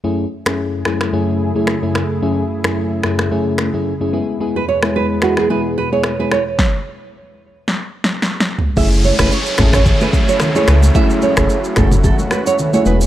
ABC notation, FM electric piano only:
X:1
M:4/4
L:1/16
Q:"Swing 16ths" 1/4=110
K:F#m
V:1 name="FM electric piano"
[F,,A,CEG]2 z [F,,A,CEG]3 [F,,A,CEG]2 [F,,A,CEG]3 [F,,A,CEG] z [F,,A,CEG] z2 | [F,,A,CEG]2 z [F,,A,CEG]3 [F,,A,CEG]2 [F,,A,CEG]3 [F,,A,CEG] z [F,,A,CEG] [G,B,EG]2 | [G,B,EG]2 z [G,B,EG]3 [G,B,EG]2 [G,B,EG]3 [G,B,EG] z [G,B,EG] z2 | z16 |
[A,CEG]3 [A,CEG] z2 [A,CEG]2 z4 z [A,CEG] z2 | [A,CEG]3 [A,CEG] z2 [A,CEG]2 z4 z [A,CEG] [G,B,EG]2 |]